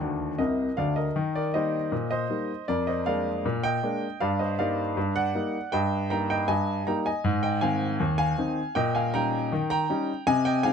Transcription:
Already playing: D#2 D#3 A#4 D#5
0.01 D2 D3
0.38 C2 C3 A#4 D#5
0.77 D2 D3 D5 F5
0.96 A#4 D#5
1.16 D#3
1.35 A#4 D5
1.54 G3 A#3 D#4 C5 D#5
1.92 A#2
2.11 C5 D#5
2.29 G3 A#3 D#4
2.68 F2 A#4 D5
2.87 C5 D#5
3.06 G#3 A#3 D4 D5 F5
3.45 A#2
3.63 D#5 G5
3.83 G#3 A#3 D4
4.20 G2 D5 F5
4.39 C5 D#5
4.59 G3 A#3 D#4 D5 F5
4.97 G2
5.16 D5 F#5
5.35 G3 A#3 D#4
5.72 G2 D#5 G5
6.10 G3 A#3 D#4 G5 A#5
6.30 D#5 G5
6.48 G2 D#5 G#5
6.87 G3 A#3 D#4 G5 A#5
7.06 D#5 G#5
7.24 G#2
7.43 D#5 G5
7.61 D#3 C4 D#4 F5 G#5
8.00 D#2
8.18 F5 G#5
8.38 D#3 C4 D#4
8.75 A#2 D#5 G5
8.95 F5 G#5
9.14 G3 C#4 D#4 G5 A#5
9.52 D#3
9.70 G5 A#5
9.89 G3 C#4 D#4
10.27 C3 D#5 G#5
10.45 D#5 G5
10.63 G#3 C4 D#4 F5 G#5

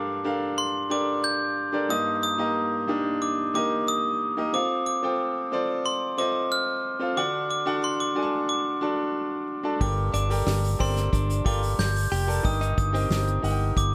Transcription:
Already playing: G2 D4 G4 A4 A#4 D5 F5 D6
0.24 D4 G4 A4 A#4 F5
0.58 C6
0.90 D4 G4 A4 A#4 D5 D6
1.24 G6
1.72 D4 G4 A4 A#4 D5
1.89 G2 A#3 D#4 G4 A#4 D#5 D#6
2.23 D#6
2.38 A#3 D#4 G4 A#4 D#5
2.87 A#3 D4 D#4 G4 A#4
3.22 D6
3.54 A#3 D#4 G4 A#4 D#5 D6
3.88 D#6
4.37 A#3 D#4 G4 A#4 D#5
4.53 C4 F4 A4 C5 F5 D6
4.86 D6
5.03 C4 F4 A4 C5 G5
5.52 C4 F4 A4 C5 D5
5.86 C6
6.18 C4 F4 A4 C5 D#5 D6
6.52 F6
6.99 C4 F4 A4 C5 F5
7.16 D3 D4 F#4 A4 D5 F#5 D6
7.51 D6
7.66 D4 F#4 A4 D5 F#5
7.84 C6
8.00 D6
8.15 D4 F#4 A4 D5 G#5
8.23 A5
8.49 D6
8.81 D4 F#4 A4 D5 A5
9.63 D4 F#4 A4 D5 A5
9.80 G1 G2 G4 A4 A#4 D5 G5 D6, kick, open hi-hat
9.97 open hi-hat
10.14 G1 D4 D6, hi-hat pedal, open hi-hat
10.30 G4 A4 A#4 D5 G5, hi-hat pedal, open hi-hat
10.47 G1, snare, hi-hat pedal, open hi-hat
10.64 hi-hat pedal, open hi-hat
10.79 G1 C4 G4 A4 A#4 D5 G5 C6, kick, hi-hat pedal, open hi-hat
10.96 snare, hi-hat pedal, open hi-hat
11.13 G1 D4, kick, hi-hat pedal, open hi-hat
11.29 hi-hat pedal, open hi-hat
11.44 G1 F4 G4 A4 A#4 D5 G5 D6, kick, hi-hat pedal, open hi-hat
11.63 hi-hat pedal, open hi-hat
11.79 G1 G6, snare, hi-hat pedal, open hi-hat
11.95 hi-hat pedal, open hi-hat
12.12 F1 G4, hi-hat pedal, open hi-hat
12.27 G4 A4 A#4 D5 A5, hi-hat pedal, open hi-hat
12.43 G1 G2 D#4 G4 A#4 D#5 G5 D#6, kick, hi-hat pedal, open hi-hat
12.61 D#4, hi-hat pedal, open hi-hat
12.78 G1 D#6, kick, hi-hat pedal, open hi-hat
12.93 C4 D#4 G4 A#4 D#5 G5, hi-hat pedal, open hi-hat
13.10 G1, snare, hi-hat pedal, open hi-hat
13.27 hi-hat pedal
13.42 G1 D#4 G4 A#4 D#5 F#5, hi-hat pedal, open hi-hat
13.50 G5
13.60 open hi-hat
13.77 G1 D6, kick, hi-hat pedal, open hi-hat

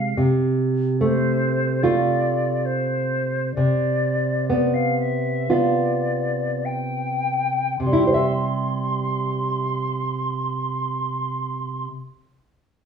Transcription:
Already playing: C3 G#3 F4 F5
0.17 C3
1.00 A3 C5
1.83 A3 F4 D5
2.66 C5
3.55 C3 D5
4.50 B3 D5
4.74 F5
5.00 E5
5.50 B3 F4 D5
6.65 G5
7.80 C3 C6
7.87 G3
7.93 E4
8.00 G4
8.07 C5
8.14 E5

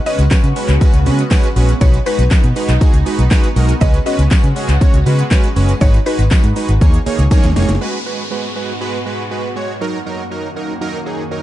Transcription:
Already playing: C#3 G#3 B3 F#4
0.06 G#3 C#4 F#4 B4 D#5, open hi-hat, tambourine, shaker
0.19 C#2, closed hi-hat, tambourine, shaker
0.31 G#3 C#4 F#4 B4, kick, snare, clap, tambourine, shaker
0.44 C#3, closed hi-hat, shaker
0.56 G#3 C#4 F#4 B4, open hi-hat, tambourine, shaker
0.68 C#2, clap, closed hi-hat, shaker
0.81 G#3 C#4 F#4 B4, kick, tambourine, shaker
0.94 C#2, closed hi-hat, shaker
1.06 C#3 G#3 C#4 F#4 B4, open hi-hat, tambourine, shaker
1.19 closed hi-hat, shaker
1.31 G#3 C#4 F#4 B4, kick, snare, clap, tambourine, shaker
1.44 closed hi-hat, shaker
1.56 A#1 G#3 C#4 F#4 B4, open hi-hat, tambourine, shaker
1.69 closed hi-hat, shaker
1.81 B1 G#3 B3 D#4 F#4 B4 C#5, kick, tambourine, shaker
1.94 closed hi-hat, shaker
2.06 G#3 D#4 F#4 B4, open hi-hat, tambourine, shaker
2.19 B1, closed hi-hat, shaker
2.31 G#3 D#4 F#4 B4, kick, snare, clap, tambourine, shaker
2.44 B2, closed hi-hat, shaker
2.56 G#3 D#4 F#4 B4, open hi-hat, tambourine, shaker
2.69 B1, clap, closed hi-hat, tambourine, shaker
2.81 G#3 D#4 F#4 G#4, kick, tambourine, shaker
2.94 C#2, closed hi-hat, shaker
3.06 G#3 D#4 F#4 B4, open hi-hat, tambourine, shaker
3.19 B1, closed hi-hat, shaker
3.31 G#3 D#4 F#4 B4, kick, snare, clap, tambourine, shaker
3.44 closed hi-hat, shaker
3.56 B1 G#3 D#4 F#4 A#4, open hi-hat, tambourine, shaker
3.68 closed hi-hat, tambourine, shaker
3.81 C#2 C#3 G#3 C#4 F#4 B4 D#5, kick, tambourine, shaker
3.94 closed hi-hat, tambourine, shaker
4.06 G#3 C#4 F#4 B4 D#5, open hi-hat, tambourine, shaker
4.19 C#2, closed hi-hat, tambourine, shaker
4.31 G#3 C#4 F#4 B4, kick, snare, clap, tambourine, shaker
4.44 C#3, closed hi-hat, shaker
4.56 G#3 C#4 F#4 G#4, open hi-hat, tambourine, shaker
4.68 C#2, clap, closed hi-hat, tambourine, shaker
4.81 G#3 C#4 F#4 C#5, kick, tambourine, shaker
4.94 C#2, closed hi-hat, shaker
5.06 C#3 G#3 C#4 F#4 B4, open hi-hat, tambourine, shaker
5.19 closed hi-hat, shaker
5.31 G#3 C#4 F#4 B4, kick, snare, clap, tambourine, shaker
5.44 closed hi-hat, shaker
5.56 F#1 G#3 C#4 F#4 B4, open hi-hat, tambourine, shaker
5.69 closed hi-hat, tambourine, shaker
5.81 G#1 G#3 D#4 F#4 B4 C#5, kick, tambourine, shaker
5.94 closed hi-hat, shaker
6.06 G#3 D#4 F#4 B4, open hi-hat, tambourine, shaker
6.19 G#1, closed hi-hat, tambourine, shaker
6.31 G#3 D#4 F#4 B4, kick, snare, clap, tambourine, shaker
6.44 G#2, closed hi-hat, shaker
6.56 G#3 D#4 F#4 B4, open hi-hat, tambourine, shaker
6.69 G#1, closed hi-hat, shaker
6.81 D#2 A#3 D#4 G#4 C#5, kick, tambourine, shaker
6.94 closed hi-hat, shaker
7.06 A#3 D#4 G#4 C#5, muted fingered electric bass stroke, open hi-hat, tambourine, shaker
7.19 C#2, closed hi-hat, shaker
7.31 A#3 D#4 G#4 C#5, kick, snare, tambourine, shaker
7.37 snare
7.44 D#2, snare, closed hi-hat, shaker
7.50 snare
7.56 F1 A#3 D#4 G#4 C#5, snare, open hi-hat, tambourine, shaker
7.62 snare
7.69 F#1, snare, closed hi-hat, tambourine, shaker
7.75 snare
7.81 G#2 G#3 B3 F#4 B4, downlifter
8.06 G#3 F#4 B4
8.31 G#3 F#4 B4
8.56 G#3 F#4 B4
8.81 G#3 F#4 B4
9.06 G#3 F#4 B4
9.31 G#3 F#4 B4
9.56 G#3 F#4 C#5
9.81 F#2 D#3 F#3 A#3 D#4 A#4
10.06 F#3 D#4 A#4
10.31 F#3 D#4 A#4
10.56 F#3 D#4 A#4
10.81 F#3 D#4 A#4
11.06 F#3 D#4 G#4
11.31 F#3 D#4 A#4

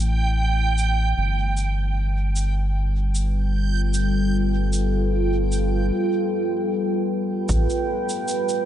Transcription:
Already playing: A1 A3 E4 B4 C5 G5
0.78 shaker
1.17 G1 G3
1.54 F4, shaker
1.96 A4
2.36 shaker
3.15 shaker
3.94 shaker
4.73 shaker
5.52 shaker
7.49 A1 A3, kick, shaker
7.70 shaker
7.78 E4
8.09 shaker
8.28 shaker
8.49 shaker

